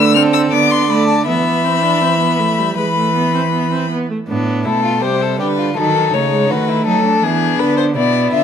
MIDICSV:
0, 0, Header, 1, 5, 480
1, 0, Start_track
1, 0, Key_signature, 0, "minor"
1, 0, Tempo, 750000
1, 813, Time_signature, 4, 2, 24, 8
1, 3218, Tempo, 733496
1, 5449, End_track
2, 0, Start_track
2, 0, Title_t, "Violin"
2, 0, Program_c, 0, 40
2, 0, Note_on_c, 0, 88, 83
2, 92, Note_off_c, 0, 88, 0
2, 96, Note_on_c, 0, 89, 71
2, 143, Note_off_c, 0, 89, 0
2, 213, Note_on_c, 0, 88, 75
2, 260, Note_off_c, 0, 88, 0
2, 328, Note_on_c, 0, 86, 80
2, 452, Note_on_c, 0, 84, 70
2, 461, Note_off_c, 0, 86, 0
2, 572, Note_on_c, 0, 83, 72
2, 581, Note_off_c, 0, 84, 0
2, 685, Note_off_c, 0, 83, 0
2, 689, Note_on_c, 0, 81, 61
2, 806, Note_off_c, 0, 81, 0
2, 810, Note_on_c, 0, 83, 81
2, 1755, Note_off_c, 0, 83, 0
2, 1776, Note_on_c, 0, 83, 70
2, 2487, Note_off_c, 0, 83, 0
2, 2975, Note_on_c, 0, 69, 73
2, 3213, Note_on_c, 0, 72, 74
2, 3222, Note_off_c, 0, 69, 0
2, 3456, Note_off_c, 0, 72, 0
2, 3460, Note_on_c, 0, 71, 73
2, 3698, Note_off_c, 0, 71, 0
2, 3703, Note_on_c, 0, 69, 84
2, 3943, Note_on_c, 0, 73, 74
2, 3953, Note_off_c, 0, 69, 0
2, 4181, Note_on_c, 0, 71, 78
2, 4191, Note_off_c, 0, 73, 0
2, 4417, Note_off_c, 0, 71, 0
2, 4421, Note_on_c, 0, 69, 78
2, 4658, Note_on_c, 0, 68, 80
2, 4668, Note_off_c, 0, 69, 0
2, 4895, Note_on_c, 0, 71, 78
2, 4905, Note_off_c, 0, 68, 0
2, 5008, Note_off_c, 0, 71, 0
2, 5012, Note_on_c, 0, 72, 73
2, 5061, Note_off_c, 0, 72, 0
2, 5137, Note_on_c, 0, 74, 77
2, 5373, Note_off_c, 0, 74, 0
2, 5379, Note_on_c, 0, 76, 78
2, 5449, Note_off_c, 0, 76, 0
2, 5449, End_track
3, 0, Start_track
3, 0, Title_t, "Violin"
3, 0, Program_c, 1, 40
3, 0, Note_on_c, 1, 71, 72
3, 90, Note_off_c, 1, 71, 0
3, 94, Note_on_c, 1, 69, 68
3, 330, Note_on_c, 1, 74, 68
3, 340, Note_off_c, 1, 69, 0
3, 806, Note_off_c, 1, 74, 0
3, 810, Note_on_c, 1, 76, 79
3, 1755, Note_off_c, 1, 76, 0
3, 1775, Note_on_c, 1, 71, 66
3, 2487, Note_off_c, 1, 71, 0
3, 2738, Note_on_c, 1, 62, 68
3, 2976, Note_on_c, 1, 64, 60
3, 2986, Note_off_c, 1, 62, 0
3, 3094, Note_off_c, 1, 64, 0
3, 3098, Note_on_c, 1, 65, 66
3, 3211, Note_off_c, 1, 65, 0
3, 3215, Note_on_c, 1, 67, 59
3, 3339, Note_on_c, 1, 69, 53
3, 3349, Note_off_c, 1, 67, 0
3, 3454, Note_off_c, 1, 69, 0
3, 3458, Note_on_c, 1, 67, 63
3, 3507, Note_off_c, 1, 67, 0
3, 3579, Note_on_c, 1, 65, 56
3, 3703, Note_on_c, 1, 63, 62
3, 3713, Note_off_c, 1, 65, 0
3, 4185, Note_on_c, 1, 66, 58
3, 4195, Note_off_c, 1, 63, 0
3, 4301, Note_on_c, 1, 64, 59
3, 4311, Note_off_c, 1, 66, 0
3, 4420, Note_off_c, 1, 64, 0
3, 4424, Note_on_c, 1, 63, 59
3, 4538, Note_off_c, 1, 63, 0
3, 4542, Note_on_c, 1, 62, 61
3, 5126, Note_off_c, 1, 62, 0
3, 5139, Note_on_c, 1, 64, 60
3, 5377, Note_on_c, 1, 65, 60
3, 5386, Note_off_c, 1, 64, 0
3, 5449, Note_off_c, 1, 65, 0
3, 5449, End_track
4, 0, Start_track
4, 0, Title_t, "Viola"
4, 0, Program_c, 2, 41
4, 0, Note_on_c, 2, 57, 83
4, 99, Note_on_c, 2, 60, 80
4, 109, Note_off_c, 2, 57, 0
4, 336, Note_on_c, 2, 59, 76
4, 346, Note_off_c, 2, 60, 0
4, 570, Note_off_c, 2, 59, 0
4, 574, Note_on_c, 2, 57, 73
4, 810, Note_off_c, 2, 57, 0
4, 814, Note_on_c, 2, 59, 64
4, 1052, Note_on_c, 2, 60, 59
4, 1062, Note_off_c, 2, 59, 0
4, 1169, Note_on_c, 2, 62, 64
4, 1178, Note_off_c, 2, 60, 0
4, 1290, Note_on_c, 2, 60, 59
4, 1300, Note_off_c, 2, 62, 0
4, 1405, Note_off_c, 2, 60, 0
4, 1409, Note_on_c, 2, 59, 60
4, 1529, Note_on_c, 2, 57, 53
4, 1538, Note_off_c, 2, 59, 0
4, 1652, Note_on_c, 2, 55, 57
4, 1662, Note_off_c, 2, 57, 0
4, 1771, Note_off_c, 2, 55, 0
4, 1775, Note_on_c, 2, 56, 57
4, 1824, Note_off_c, 2, 56, 0
4, 1895, Note_on_c, 2, 57, 61
4, 2015, Note_off_c, 2, 57, 0
4, 2020, Note_on_c, 2, 59, 60
4, 2136, Note_off_c, 2, 59, 0
4, 2139, Note_on_c, 2, 60, 59
4, 2188, Note_off_c, 2, 60, 0
4, 2259, Note_on_c, 2, 59, 56
4, 2378, Note_off_c, 2, 59, 0
4, 2382, Note_on_c, 2, 60, 53
4, 2499, Note_off_c, 2, 60, 0
4, 2503, Note_on_c, 2, 59, 58
4, 2620, Note_off_c, 2, 59, 0
4, 2624, Note_on_c, 2, 57, 52
4, 2671, Note_off_c, 2, 57, 0
4, 2740, Note_on_c, 2, 59, 62
4, 2977, Note_on_c, 2, 57, 57
4, 2986, Note_off_c, 2, 59, 0
4, 3211, Note_off_c, 2, 57, 0
4, 3215, Note_on_c, 2, 55, 62
4, 3692, Note_off_c, 2, 55, 0
4, 3702, Note_on_c, 2, 54, 62
4, 3944, Note_on_c, 2, 57, 58
4, 3954, Note_off_c, 2, 54, 0
4, 4057, Note_off_c, 2, 57, 0
4, 4061, Note_on_c, 2, 56, 62
4, 4180, Note_off_c, 2, 56, 0
4, 4186, Note_on_c, 2, 57, 71
4, 4661, Note_on_c, 2, 59, 69
4, 4671, Note_off_c, 2, 57, 0
4, 5139, Note_off_c, 2, 59, 0
4, 5142, Note_on_c, 2, 59, 67
4, 5449, Note_off_c, 2, 59, 0
4, 5449, End_track
5, 0, Start_track
5, 0, Title_t, "Cello"
5, 0, Program_c, 3, 42
5, 0, Note_on_c, 3, 50, 81
5, 326, Note_off_c, 3, 50, 0
5, 330, Note_on_c, 3, 50, 69
5, 814, Note_on_c, 3, 52, 66
5, 823, Note_off_c, 3, 50, 0
5, 1772, Note_off_c, 3, 52, 0
5, 1776, Note_on_c, 3, 52, 69
5, 2487, Note_off_c, 3, 52, 0
5, 2740, Note_on_c, 3, 45, 61
5, 2976, Note_on_c, 3, 47, 60
5, 2985, Note_off_c, 3, 45, 0
5, 3214, Note_on_c, 3, 48, 64
5, 3224, Note_off_c, 3, 47, 0
5, 3461, Note_on_c, 3, 50, 66
5, 3471, Note_off_c, 3, 48, 0
5, 3699, Note_off_c, 3, 50, 0
5, 3703, Note_on_c, 3, 51, 72
5, 3937, Note_off_c, 3, 51, 0
5, 3941, Note_on_c, 3, 49, 67
5, 4183, Note_on_c, 3, 51, 65
5, 4193, Note_off_c, 3, 49, 0
5, 4417, Note_off_c, 3, 51, 0
5, 4421, Note_on_c, 3, 54, 63
5, 4655, Note_off_c, 3, 54, 0
5, 4662, Note_on_c, 3, 52, 64
5, 4895, Note_off_c, 3, 52, 0
5, 4899, Note_on_c, 3, 50, 62
5, 5139, Note_on_c, 3, 47, 65
5, 5149, Note_off_c, 3, 50, 0
5, 5377, Note_off_c, 3, 47, 0
5, 5381, Note_on_c, 3, 50, 66
5, 5449, Note_off_c, 3, 50, 0
5, 5449, End_track
0, 0, End_of_file